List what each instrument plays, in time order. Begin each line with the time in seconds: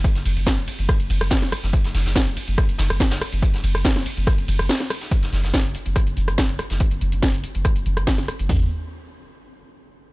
0.04 kick, closed hi-hat
0.15 sub bass F#1, snare, closed hi-hat
0.25 sub bass F#1, closed hi-hat, open hi-hat, ride
0.36 sub bass F#1, closed hi-hat
0.46 kick, snare, closed hi-hat
0.58 sub bass F#1, closed hi-hat
0.68 closed hi-hat, open hi-hat, ride
0.79 sub bass F#1, closed hi-hat
0.89 kick, cross-stick, closed hi-hat
1.00 sub bass F#1, closed hi-hat
1.10 sub bass F#1, closed hi-hat, open hi-hat, ride
1.21 sub bass F#1, cross-stick, open hi-hat
1.30 kick, snare, closed hi-hat
1.42 sub bass F#1, snare, closed hi-hat
1.52 cross-stick, closed hi-hat, open hi-hat, ride
1.63 sub bass F#1, snare, closed hi-hat
1.73 kick, closed hi-hat
1.84 sub bass F#1, snare, closed hi-hat
1.94 sub bass F#1, snare, open hi-hat, ride
2.05 sub bass F#1, snare, closed hi-hat
2.15 kick, snare, closed hi-hat
2.27 sub bass F#1, closed hi-hat
2.37 closed hi-hat, open hi-hat, ride
2.48 sub bass F#1, closed hi-hat
2.58 kick, cross-stick, closed hi-hat
2.69 sub bass F#1, closed hi-hat
2.78 sub bass F#1, snare, closed hi-hat, open hi-hat, ride
2.90 sub bass F#1, cross-stick, closed hi-hat
3.00 kick, snare, closed hi-hat
3.10 sub bass F#1, snare, closed hi-hat
3.21 cross-stick, open hi-hat, ride
3.32 sub bass F#1, closed hi-hat
3.42 kick, closed hi-hat
3.53 sub bass F#1, snare, closed hi-hat
3.63 sub bass F#1, closed hi-hat, open hi-hat, ride
3.74 sub bass F#1, cross-stick, closed hi-hat
3.84 kick, snare, closed hi-hat
3.96 sub bass F#1, snare, closed hi-hat
4.06 closed hi-hat, open hi-hat, ride
4.17 sub bass F#1, closed hi-hat
4.27 kick, cross-stick, closed hi-hat
4.38 sub bass F#1, closed hi-hat
4.48 sub bass F#1, closed hi-hat, open hi-hat, ride
4.59 sub bass F#1, cross-stick, open hi-hat
4.69 snare, closed hi-hat
4.80 snare, closed hi-hat
4.90 cross-stick, closed hi-hat, open hi-hat, ride
5.01 snare, closed hi-hat
5.11 kick, closed hi-hat
5.22 sub bass F#1, snare, closed hi-hat
5.32 sub bass F#1, snare, open hi-hat
5.43 sub bass F#1, snare, closed hi-hat
5.54 kick, snare, closed hi-hat
5.65 sub bass F#1, closed hi-hat
5.75 closed hi-hat, open hi-hat
5.86 sub bass F#1, closed hi-hat
5.96 kick, cross-stick, closed hi-hat
6.07 sub bass F#1, closed hi-hat
6.17 sub bass F#1, closed hi-hat, open hi-hat
6.27 sub bass F#1, cross-stick, closed hi-hat
6.38 kick, snare, closed hi-hat
6.49 sub bass F#1, closed hi-hat
6.59 cross-stick, closed hi-hat, open hi-hat
6.70 sub bass F#1, snare, closed hi-hat
6.80 kick, closed hi-hat
6.91 sub bass F#1, closed hi-hat
7.01 sub bass F#1, open hi-hat
7.12 sub bass F#1, closed hi-hat
7.22 kick, snare, closed hi-hat
7.34 sub bass F#1, closed hi-hat
7.44 open hi-hat
7.55 sub bass F#1, closed hi-hat
7.65 kick, cross-stick, closed hi-hat
7.76 sub bass F#1, closed hi-hat
7.86 sub bass F#1, open hi-hat
7.97 sub bass F#1, cross-stick, closed hi-hat
8.07 kick, snare, closed hi-hat
8.18 sub bass F#1, snare, closed hi-hat
8.28 cross-stick, open hi-hat
8.39 sub bass F#1, closed hi-hat
8.49 sub bass F#1, kick, floor tom, open hi-hat